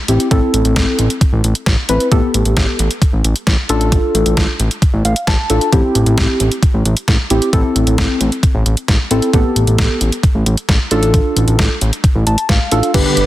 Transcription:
0.08 analog synth bass A1, synth keys C4 E4 G4, closed hi-hat
0.20 closed hi-hat
0.31 analog synth bass A1, synth keys C4 E4 A4, kick, closed hi-hat
0.54 analog synth bass A1, closed hi-hat
0.65 analog synth bass A1, closed hi-hat
0.76 analog synth bass A1, kick, snare, closed hi-hat
0.99 analog synth bass A1, closed hi-hat
1.10 closed hi-hat
1.21 kick, closed hi-hat
1.33 analog synth bass A1
1.44 analog synth bass A1, closed hi-hat
1.55 closed hi-hat
1.66 analog synth bass A1, kick, snare, closed hi-hat
1.89 analog synth bass A1, synth keys C4 E4 B4, closed hi-hat
2.00 closed hi-hat
2.12 analog synth bass A1, synth keys B3 G4 A4, kick, closed hi-hat
2.34 analog synth bass A1, closed hi-hat
2.45 analog synth bass A1, closed hi-hat
2.57 analog synth bass A1, kick, snare, closed hi-hat
2.79 analog synth bass A1, closed hi-hat
2.91 closed hi-hat
3.02 kick, closed hi-hat
3.13 analog synth bass A1
3.24 analog synth bass A1, closed hi-hat
3.36 closed hi-hat
3.47 analog synth bass A1, kick, snare, closed hi-hat
3.69 analog synth bass A1, synth keys D4 F4 A4, closed hi-hat
3.81 closed hi-hat
3.92 kick, closed hi-hat
4.15 analog synth bass A1, closed hi-hat
4.26 analog synth bass A1, closed hi-hat
4.37 analog synth bass A1, kick, snare, closed hi-hat
4.60 analog synth bass A1, closed hi-hat
4.71 closed hi-hat
4.82 kick, closed hi-hat
4.94 analog synth bass A1
5.05 analog synth bass A1, synth keys F5, closed hi-hat
5.16 closed hi-hat
5.27 analog synth bass A1, synth keys A5, kick, snare, closed hi-hat
5.50 analog synth bass A1, synth keys D4 F4 A4, closed hi-hat
5.61 closed hi-hat
5.73 analog synth bass A1, synth keys C4 E4 G4, kick, closed hi-hat
5.95 analog synth bass A1, closed hi-hat
6.06 analog synth bass A1, closed hi-hat
6.18 analog synth bass A1, kick, snare, closed hi-hat
6.40 analog synth bass A1, closed hi-hat
6.52 closed hi-hat
6.63 kick, closed hi-hat
6.74 analog synth bass A1
6.85 analog synth bass A1, closed hi-hat
6.97 closed hi-hat
7.08 analog synth bass A1, kick, snare, closed hi-hat
7.30 analog synth bass A1, synth keys C4 E4 G4, closed hi-hat
7.42 closed hi-hat
7.53 analog synth bass A1, synth keys C4 E4 A4, kick, closed hi-hat
7.76 analog synth bass A1, closed hi-hat
7.87 analog synth bass A1, closed hi-hat
7.98 analog synth bass A1, kick, snare, closed hi-hat
8.21 analog synth bass A1, closed hi-hat
8.32 closed hi-hat
8.43 kick, closed hi-hat
8.55 analog synth bass A1
8.66 analog synth bass A1, closed hi-hat
8.77 closed hi-hat
8.88 analog synth bass A1, kick, snare, closed hi-hat
9.11 analog synth bass A1, synth keys C4 E4 A4, closed hi-hat
9.22 closed hi-hat
9.33 analog synth bass A1, synth keys B3 G4 A4, kick, closed hi-hat
9.56 analog synth bass A1, closed hi-hat
9.67 analog synth bass A1, closed hi-hat
9.78 analog synth bass A1, kick, snare, closed hi-hat
10.01 analog synth bass A1, closed hi-hat
10.12 closed hi-hat
10.23 kick, closed hi-hat
10.35 analog synth bass A1
10.46 analog synth bass A1, closed hi-hat
10.57 closed hi-hat
10.69 analog synth bass A1, kick, snare, closed hi-hat
10.91 analog synth bass A1, synth keys D4 F4 A4, closed hi-hat
11.03 closed hi-hat
11.14 kick, closed hi-hat
11.36 analog synth bass A1, closed hi-hat
11.48 analog synth bass A1, closed hi-hat
11.59 analog synth bass A1, kick, snare, closed hi-hat
11.81 analog synth bass A1, closed hi-hat
11.93 closed hi-hat
12.04 kick, closed hi-hat
12.15 analog synth bass A1
12.27 analog synth bass A1, synth keys A5, closed hi-hat
12.38 closed hi-hat
12.49 analog synth bass A1, synth keys F5, kick, snare, closed hi-hat
12.71 analog synth bass A1, synth keys D4 F4 A4, closed hi-hat
12.83 closed hi-hat
12.94 analog synth bass G1, string machine D3 G3 B3 G4, synth keys D4 G4 B4, kick, closed hi-hat, crash
13.06 synth keys D4 G4 B4
13.17 analog synth bass G1, closed hi-hat

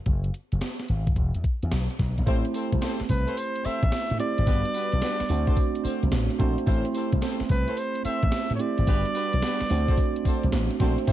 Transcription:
0.06 slap bass F#1, kick, closed hi-hat
0.24 closed hi-hat
0.34 closed hi-hat
0.52 slap bass F#1, closed hi-hat
0.61 snare, closed hi-hat
0.80 snare, closed hi-hat
0.88 slap bass G#1, closed hi-hat
1.07 kick, closed hi-hat
1.16 slap bass E1, kick, closed hi-hat
1.34 slap bass E2, closed hi-hat
1.44 kick, closed hi-hat
1.63 slap bass E2, closed hi-hat
1.72 slap bass B1, snare, closed hi-hat
1.90 closed hi-hat
1.99 slap bass B1, kick, snare, closed hi-hat
2.18 slap bass A#1, closed hi-hat
2.26 slap bass A1, tine electric piano A3 C4 E4 G4 C5, horn section C4 E4 G4 A4 C5, kick, closed hi-hat, tambourine
2.45 closed hi-hat
2.53 horn section C4 E4 G4 A4 C5, closed hi-hat, tambourine
2.73 slap bass C2, kick, closed hi-hat
2.81 horn section C4 E4 G4 A4 C5, snare, closed hi-hat, tambourine
3.00 muted slap bass stroke, snare, closed hi-hat
3.09 slap bass C2, trumpet B4, kick, closed hi-hat, tambourine
3.27 horn section C4 E4 G4 A4 C5, closed hi-hat
3.37 trumpet C5, closed hi-hat, tambourine
3.56 closed hi-hat
3.64 horn section C4 E4 G4 A4 C5, trumpet E5, muted slap bass stroke, closed hi-hat, tambourine
3.83 slap bass A1, kick, closed hi-hat
3.92 snare, closed hi-hat, tambourine
4.10 slap bass A2, closed hi-hat
4.19 tine electric piano A3 C4 E4 G4 C5, trumpet D5, closed hi-hat
4.38 slap bass G#1, closed hi-hat
4.46 slap bass G1, tine electric piano G3 B3 D4 F#4 B4, horn section B3 D4 F#4 G4 B4, kick, closed hi-hat, tambourine
4.65 closed hi-hat
4.74 horn section B3 D4 F#4 G4 B4, closed hi-hat, tambourine
4.92 slap bass B1, closed hi-hat
5.01 horn section B3 D4 F#4 G4 B4, snare, closed hi-hat, tambourine
5.20 muted slap bass stroke, snare, closed hi-hat
5.29 slap bass D2, tine electric piano A3 C4 D4 F#4 C5, closed hi-hat, tambourine
5.47 horn section C4 D4 F#4 A4 C5, kick, closed hi-hat
5.57 kick, closed hi-hat, tambourine
5.75 closed hi-hat
5.84 horn section C4 D4 F#4 A4 C5, muted slap bass stroke, closed hi-hat, tambourine
6.03 slap bass C2, closed hi-hat
6.12 slap bass A1, snare, closed hi-hat, tambourine
6.30 closed hi-hat
6.39 slap bass A#1, tine electric piano A3 C4 D4 F#4 C5, horn section C4 D4 F#4 A4 C5, kick, closed hi-hat
6.58 closed hi-hat
6.66 slap bass A1, tine electric piano A3 C4 E4 G4 C5, horn section C4 E4 G4 A4 C5, kick, closed hi-hat, tambourine
6.85 closed hi-hat
6.94 horn section C4 E4 G4 A4 C5, closed hi-hat, tambourine
7.12 slap bass C2, kick, closed hi-hat
7.21 horn section C4 E4 G4 A4 C5, snare, closed hi-hat, tambourine
7.40 muted slap bass stroke, snare, closed hi-hat
7.49 slap bass C2, trumpet B4, kick, closed hi-hat, tambourine
7.67 horn section C4 E4 G4 A4 C5, closed hi-hat
7.77 trumpet C5, closed hi-hat, tambourine
7.95 closed hi-hat
8.04 horn section C4 E4 G4 A4 C5, trumpet E5, muted slap bass stroke, closed hi-hat, tambourine
8.23 slap bass A1, kick, closed hi-hat
8.32 snare, closed hi-hat, tambourine
8.50 slap bass A2, closed hi-hat
8.56 tine electric piano A3 C4, trumpet C#5, closed hi-hat
8.60 tine electric piano E4 G4 C5, trumpet D5
8.78 slap bass G#1, closed hi-hat
8.87 slap bass G1, tine electric piano G3 B3 D4 F#4 B4, horn section B3 D4 F#4 G4 B4, kick, closed hi-hat, tambourine
9.05 closed hi-hat
9.15 horn section B3 D4 F#4 G4 B4, closed hi-hat, tambourine
9.33 slap bass B1, closed hi-hat
9.42 horn section B3 D4 F#4 G4 B4, snare, closed hi-hat, tambourine
9.61 muted slap bass stroke, snare, closed hi-hat
9.70 slap bass D2, tine electric piano A3 C4 D4 F#4 C5, open hi-hat, tambourine
9.88 horn section C4 D4 F#4 A4 C5, kick, closed hi-hat
9.98 kick, closed hi-hat, tambourine
10.16 closed hi-hat
10.25 horn section C4 D4 F#4 A4 C5, muted slap bass stroke, kick, closed hi-hat, tambourine
10.43 slap bass C2, closed hi-hat
10.52 slap bass A1, snare, closed hi-hat, tambourine
10.70 closed hi-hat
10.80 slap bass A#1, tine electric piano A3 C4 D4 F#4 C5, horn section C4 D4 F#4 A4 C5, kick, snare, open hi-hat
10.98 closed hi-hat
11.07 slap bass A1, tine electric piano A3 C4 E4 G4 C5, horn section C4 E4 G4 A4 C5, kick, closed hi-hat, tambourine

